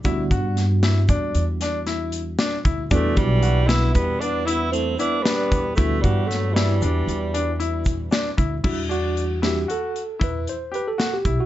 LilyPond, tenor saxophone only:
\new Staff \with { instrumentName = "Tenor saxophone" } { \time 11/8 \key e \minor \tempo 4 = 115 r1 r4. | a8 g4 e'8 b8 d'8 e'8 c'8 d'8 b4 | a8 g8 a8 g2 r2 | r1 r4. | }